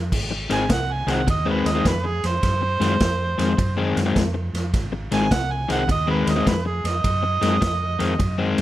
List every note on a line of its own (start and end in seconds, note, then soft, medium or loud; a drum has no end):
0.12 0.46 G#1 medium
0.12 kick medium
0.12 crash loud
0.31 muted overdriven electric guitar stroke medium
0.49 0.68 G#1 medium
0.49 0.62 G#2 medium
0.49 0.63 D#3 medium
0.49 0.63 G#3 medium
0.49 0.63 C4 medium
0.49 0.70 G#5 loud
0.49 snare soft
0.49 ride medium
0.69 1.04 C2 medium
0.69 0.94 F#5 medium
0.69 muted overdriven electric guitar stroke soft
0.69 kick medium
0.69 snare loud
0.69 ride medium
0.93 1.13 G#5 medium
1.07 1.25 C2 medium
1.07 1.20 G#2 medium
1.07 1.20 D#3 medium
1.07 1.20 G#3 medium
1.07 1.20 C4 medium
1.07 snare soft
1.07 ride medium
1.11 1.28 F#5 medium
1.27 1.62 D#2 medium
1.27 1.47 D#5 medium
1.27 muted overdriven electric guitar stroke soft
1.27 kick medium
1.27 ride medium
1.46 1.69 G#2 medium
1.46 1.68 D#3 medium
1.46 1.68 G#3 medium
1.46 1.68 C4 medium
1.50 1.69 B4 medium
1.65 1.83 D#2 medium
1.65 1.85 D#5 medium
1.65 snare soft
1.65 ride medium
1.75 1.91 G#2 medium
1.75 1.91 D#3 medium
1.75 1.91 G#3 medium
1.75 1.91 C4 medium
1.85 2.20 F2 medium
1.85 2.08 B4 medium
1.85 kick medium
1.85 snare loud
1.85 ride medium
2.04 2.28 G#4 medium
2.04 muted overdriven electric guitar stroke soft
2.24 2.41 F2 medium
2.24 3.94 C5 loud
2.24 snare soft
2.24 ride medium
2.43 2.77 F#2 medium
2.43 kick medium
2.43 snare soft
2.43 ride medium
2.62 muted overdriven electric guitar stroke soft
2.80 2.98 F#2 medium
2.80 2.93 G#2 medium
2.80 2.93 D#3 medium
2.80 2.94 G#3 medium
2.80 2.94 C4 medium
2.80 snare soft
2.80 ride medium
3.00 3.35 F2 medium
3.00 muted overdriven electric guitar stroke soft
3.00 kick medium
3.00 snare loud
3.00 ride medium
3.38 3.56 F2 medium
3.38 3.51 G#2 medium
3.38 3.51 D#3 medium
3.38 3.51 G#3 medium
3.38 3.52 C4 medium
3.38 snare soft
3.38 ride medium
3.58 3.93 F#2 medium
3.58 muted overdriven electric guitar stroke soft
3.58 kick medium
3.58 ride medium
3.77 4.00 G#2 medium
3.77 4.00 D#3 medium
3.77 3.99 G#3 medium
3.77 3.99 C4 medium
3.96 4.14 F#2 medium
3.96 snare soft
3.96 ride medium
4.05 4.22 G#2 medium
4.05 4.21 D#3 medium
4.05 4.21 G#3 medium
4.05 4.21 C4 medium
4.16 4.50 F2 medium
4.16 kick medium
4.16 snare loud
4.16 ride medium
4.34 muted overdriven electric guitar stroke medium
4.53 4.71 F2 medium
4.53 snare soft
4.53 ride medium
4.74 5.08 G#1 medium
4.74 kick medium
4.74 snare soft
4.74 ride medium
4.92 muted overdriven electric guitar stroke medium
5.11 5.29 G#1 medium
5.11 5.24 G#2 medium
5.11 5.25 D#3 medium
5.11 5.25 G#3 loud
5.11 5.25 C4 loud
5.11 5.34 G#5 loud
5.11 snare soft
5.11 ride medium
5.31 5.66 C2 medium
5.31 5.54 F#5 medium
5.31 muted overdriven electric guitar stroke soft
5.31 kick medium
5.31 snare loud
5.31 ride medium
5.52 5.70 G#5 medium
5.68 5.87 C2 medium
5.68 5.82 G#2 medium
5.68 5.82 D#3 medium
5.68 5.82 G#3 medium
5.68 5.82 C4 medium
5.68 5.90 F#5 medium
5.68 snare soft
5.68 ride medium
5.88 6.23 D#2 medium
5.88 6.09 D#5 loud
5.88 muted overdriven electric guitar stroke soft
5.88 kick medium
5.88 ride medium
6.07 6.30 G#2 medium
6.07 6.30 D#3 medium
6.07 6.30 G#3 medium
6.07 6.30 C4 medium
6.07 6.32 B4 medium
6.26 6.44 D#2 medium
6.26 6.47 D#5 medium
6.26 snare soft
6.26 ride medium
6.36 6.52 G#2 medium
6.36 6.52 D#3 medium
6.36 6.52 G#3 medium
6.36 6.52 C4 medium
6.46 6.81 F2 medium
6.46 6.66 B4 medium
6.46 kick medium
6.46 snare loud
6.46 ride medium
6.65 6.89 G#4 medium
6.65 muted overdriven electric guitar stroke medium
6.84 7.02 F2 medium
6.84 8.55 D#5 loud
6.84 snare soft
6.84 ride medium
7.04 7.39 F#2 medium
7.04 kick medium
7.04 ride medium
7.23 muted overdriven electric guitar stroke soft
7.41 7.60 F#2 medium
7.41 7.55 G#2 medium
7.41 7.55 D#3 medium
7.41 7.55 G#3 loud
7.41 7.55 C4 loud
7.41 snare soft
7.41 ride medium
7.61 7.96 F2 medium
7.61 muted overdriven electric guitar stroke soft
7.61 kick medium
7.61 snare loud
7.61 ride medium
7.99 8.18 F2 medium
7.99 8.12 G#2 medium
7.99 8.12 D#3 medium
7.99 8.13 G#3 medium
7.99 8.13 C4 medium
7.99 snare soft
7.99 ride medium
8.19 8.54 F#2 medium
8.19 muted overdriven electric guitar stroke soft
8.19 kick medium
8.19 ride medium
8.38 8.61 G#2 medium
8.38 8.61 D#3 medium
8.38 8.61 G#3 medium
8.38 8.61 C4 medium
8.58 8.62 F#2 medium
8.58 snare soft
8.58 ride medium